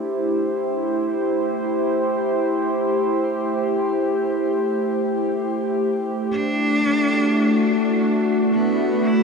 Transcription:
Already playing: ambient pad A3 D4 E4 G4 C5
6.31 ambient pad A3, cello D4
6.57 ambient pad D4
6.78 ambient pad F#4
8.26 ambient pad B4
8.52 cello B3
9.06 cello E4

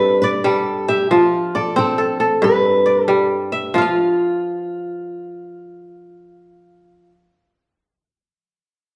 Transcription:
Already playing: kora G2 C4 A4, steel-string acoustic guitar B4
0.22 steel-string acoustic guitar B4, kora D5
0.44 kora G3, steel-string acoustic guitar A4
0.88 steel-string acoustic guitar G4, kora E5
1.11 kora F3, steel-string acoustic guitar F4
1.55 steel-string acoustic guitar A4, kora D5
1.76 kora C4, steel-string acoustic guitar A4
1.98 kora A4
2.20 kora A4
2.42 kora G2, steel-string acoustic guitar B4
2.86 kora D5
3.04 kora G3, steel-string acoustic guitar A4
3.52 kora E5
3.74 kora F3 F4, steel-string acoustic guitar F4
3.82 kora F5

